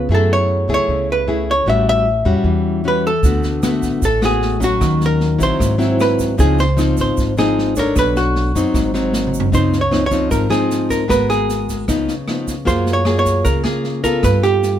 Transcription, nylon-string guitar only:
0.11 0.87 F#3 medium
0.11 0.66 A3 medium
0.11 0.66 E4 soft
0.11 0.66 G#4 medium
0.69 1.25 A3 medium
0.69 1.24 E4 medium
0.69 1.25 G#4 medium
0.90 1.65 C#3 medium
1.28 1.53 A3 medium
1.28 1.53 E4 soft
1.28 1.53 G#4 medium
1.67 2.43 A2 medium
1.67 2.06 G3 medium
1.67 2.06 C#4 medium
1.67 2.06 F#4 medium
2.25 2.81 G3 medium
2.25 2.81 C#4 medium
2.25 2.81 F#4 medium
2.45 3.21 E3 medium
2.84 3.09 G3 soft
2.84 3.10 C#4 soft
2.84 3.10 F#4 medium
3.24 4.01 D3 medium
3.24 3.60 A3 medium
3.24 3.60 B3 medium
3.24 3.61 F#4 medium
3.63 4.02 A3 medium
3.63 4.02 B3 medium
3.63 4.02 F#4 medium
4.03 4.79 A2 medium
4.22 4.58 A3 medium
4.22 4.58 B3 medium
4.22 4.58 F#4 medium
4.60 5.36 F#3 medium
4.60 5.36 C#4 medium
4.81 5.57 D#3 medium
5.39 5.75 F#3 medium
5.39 5.76 C4 medium
5.39 5.76 E4 medium
5.59 6.36 G#2 medium
5.78 6.35 F#3 medium
5.78 6.35 C4 medium
5.78 6.35 E4 medium
6.37 7.14 C#3 medium
6.37 6.63 F3 medium
6.37 6.63 C4 soft
6.37 6.63 D#4 medium
6.77 7.33 F3 medium
6.77 7.33 C4 medium
6.77 7.33 D#4 medium
7.17 7.94 G#2 medium
7.38 7.73 F3 medium
7.38 7.73 C4 medium
7.38 7.74 D#4 medium
7.77 8.52 D4 medium
7.77 8.52 A4 medium
7.77 8.52 C#5 medium
7.95 8.55 B3 medium
8.55 8.91 F#3 medium
8.55 8.91 C4 medium
8.55 8.91 D#4 medium
8.75 9.51 G#2 medium
8.94 9.50 F#3 medium
8.94 9.50 C4 medium
8.94 9.50 D#4 medium
9.52 10.29 C#3 medium
9.52 9.78 F3 medium
9.52 9.78 C4 medium
9.52 9.78 D#4 medium
9.91 10.03 F3 soft
9.91 10.03 C4 medium
9.91 10.04 D#4 medium
10.11 10.47 F3 medium
10.11 10.48 C4 medium
10.11 10.48 D#4 medium
10.31 11.07 G#2 medium
10.50 11.06 F3 medium
10.50 11.06 C4 medium
10.50 11.06 D#4 medium
11.08 11.85 G#3 medium
11.08 11.84 B3 soft
11.08 11.85 F#4 soft
11.08 11.85 A#4 medium
11.88 12.65 C#3 medium
11.88 12.13 F3 soft
11.88 12.14 B3 medium
11.88 12.14 D#4 medium
12.28 12.54 F3 soft
12.28 12.54 B3 soft
12.28 12.54 D#4 soft
12.65 13.43 F#3 medium
12.65 13.02 A#3 medium
12.65 13.03 F4 soft
12.65 13.03 G#4 medium
13.06 13.62 A#3 medium
13.06 13.62 F4 medium
13.06 13.62 G#4 medium
13.45 14.22 C#3 medium
13.65 14.01 A#3 medium
13.65 14.01 F4 medium
13.65 14.02 G#4 medium
14.04 14.79 B3 medium
14.04 14.79 F4 medium
14.04 14.79 A4 medium
14.24 14.79 G3 medium

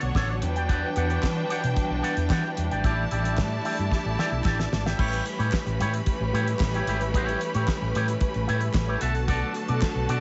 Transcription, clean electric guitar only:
0.03 muted clean electric guitar stroke soft
0.15 0.35 D4 loud
0.15 0.30 A4 medium
0.15 0.28 C#5 medium
0.29 muted clean electric guitar stroke soft
0.42 muted clean electric guitar stroke soft
0.56 0.67 G4 medium
0.56 0.68 D5 medium
0.56 0.70 G5 medium
0.68 0.88 G4 medium
0.68 0.89 D5 medium
0.68 0.89 F#5 medium
0.96 1.09 G4 medium
0.96 1.09 D5 medium
0.96 1.07 F#5 medium
1.09 1.25 G4 medium
1.09 1.25 D5 medium
1.09 1.24 F#5 medium
1.36 muted clean electric guitar stroke soft
1.49 1.69 G4 medium
1.49 1.62 D5 medium
1.49 1.61 F#5 medium
1.62 muted clean electric guitar stroke medium
1.76 muted clean electric guitar stroke soft
1.89 muted clean electric guitar stroke soft
2.02 2.22 G4 medium
2.02 2.17 D5 medium
2.02 2.15 F#5 medium
2.16 muted clean electric guitar stroke soft
2.30 2.50 G4 medium
2.30 2.44 D5 medium
2.30 2.44 F#5 medium
2.45 muted clean electric guitar stroke soft
2.57 muted clean electric guitar stroke soft
2.71 2.84 G4 soft
2.71 2.85 D5 medium
2.71 2.86 G5 medium
2.84 3.04 E4 medium
2.84 3.04 G4 medium
2.84 3.05 D5 medium
3.11 3.24 E4 medium
3.11 3.24 G4 medium
3.11 3.23 D5 medium
3.24 3.40 E4 soft
3.24 3.40 G4 medium
3.24 3.39 D5 medium
3.51 muted clean electric guitar stroke soft
3.65 3.84 E4 medium
3.65 3.78 G4 medium
3.65 3.76 D5 medium
3.78 muted clean electric guitar stroke soft
3.91 muted clean electric guitar stroke medium
4.05 muted clean electric guitar stroke medium
4.19 4.38 E4 medium
4.19 4.32 G4 medium
4.19 4.31 D5 loud
4.32 muted clean electric guitar stroke medium
4.45 4.64 E4 medium
4.45 4.59 G4 medium
4.45 4.58 D5 loud
4.60 muted clean electric guitar stroke soft
4.73 muted clean electric guitar stroke soft
4.86 4.98 E4 soft
4.86 4.99 G4 medium
4.86 5.00 E5 medium
4.99 5.24 E4 medium
4.99 5.24 G4 medium
4.99 5.25 C#5 medium
5.26 muted clean electric guitar stroke soft
5.39 5.51 E4 medium
5.39 5.52 G4 medium
5.39 5.53 C#5 medium
5.52 muted clean electric guitar stroke soft
5.66 muted clean electric guitar stroke soft
5.80 5.99 E4 medium
5.80 5.95 G4 medium
5.80 5.93 C#5 loud
5.94 muted clean electric guitar stroke soft
6.21 muted clean electric guitar stroke medium
6.33 6.53 E4 medium
6.33 6.48 G4 medium
6.33 6.46 C#5 medium
6.47 muted clean electric guitar stroke medium
6.60 muted clean electric guitar stroke soft
6.74 6.87 E4 medium
6.74 6.88 G4 medium
6.74 6.89 C#5 medium
6.88 7.07 E4 medium
6.88 7.02 G4 medium
6.88 7.01 E5 medium
7.02 muted clean electric guitar stroke soft
7.15 7.39 E4 medium
7.15 7.40 G4 medium
7.15 7.40 C#5 loud
7.42 muted clean electric guitar stroke soft
7.55 7.67 E4 soft
7.55 7.68 G4 medium
7.55 7.68 C#5 medium
7.68 muted clean electric guitar stroke soft
7.81 muted clean electric guitar stroke soft
7.95 8.14 E4 medium
7.95 8.08 G4 medium
7.95 8.07 C#5 medium
8.08 muted clean electric guitar stroke medium
8.34 muted clean electric guitar stroke soft
8.47 8.67 E4 medium
8.47 8.61 G4 medium
8.47 8.60 C#5 medium
8.61 muted clean electric guitar stroke soft
8.75 muted clean electric guitar stroke soft
8.88 9.04 E4 medium
8.88 9.01 G4 medium
8.88 9.02 C#5 medium
9.01 9.21 F#4 medium
9.01 9.16 A4 medium
9.01 9.15 E5 medium
9.15 muted clean electric guitar stroke soft
9.28 9.53 F#4 medium
9.28 9.53 A4 loud
9.28 9.54 D5 medium
9.68 9.80 F#4 soft
9.68 9.81 A4 medium
9.68 9.81 D5 medium
9.81 muted clean electric guitar stroke soft
9.95 muted clean electric guitar stroke soft
10.09 10.20 F#4 medium
10.09 10.20 A4 medium
10.09 10.20 D5 loud

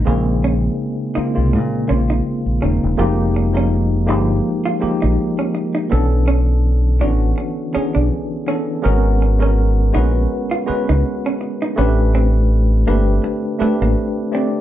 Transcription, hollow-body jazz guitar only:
0.07 0.18 A#3 medium
0.44 0.55 C#4 medium
1.15 1.27 D#4 medium
1.53 muted hollow-body jazz guitar stroke soft
1.89 2.01 C#4 medium
2.10 2.19 D#4 medium
2.62 2.74 C#4 medium
2.99 3.11 F4 medium
3.36 muted hollow-body jazz guitar stroke soft
3.57 3.66 C#4 medium
4.09 4.20 D#4 medium
4.66 4.75 F4 medium
4.82 muted hollow-body jazz guitar stroke soft
5.02 5.11 D#4 medium
5.39 5.48 C#4 medium
5.55 muted hollow-body jazz guitar stroke soft
5.75 5.84 D#4 medium
5.92 6.03 B3 medium
6.28 6.39 C#4 medium
7.01 7.13 D4 medium
7.38 muted hollow-body jazz guitar stroke soft
7.75 7.86 C#4 medium
7.95 8.04 D4 medium
8.48 8.59 C#4 medium
8.85 8.97 B3 medium
9.22 muted hollow-body jazz guitar stroke soft
9.42 9.51 C#4 medium
9.95 10.06 D#4 medium
10.51 10.60 F4 medium
10.68 muted hollow-body jazz guitar stroke soft
10.89 10.98 D#4 medium
11.26 11.35 C#4 medium
11.41 muted hollow-body jazz guitar stroke soft
11.62 11.71 D#4 medium
11.79 11.90 C#4 medium
12.15 12.26 C4 medium
12.88 12.99 A#3 medium
13.24 muted hollow-body jazz guitar stroke soft
13.62 13.73 A3 medium
13.82 13.91 A#3 medium
14.35 14.46 C4 medium

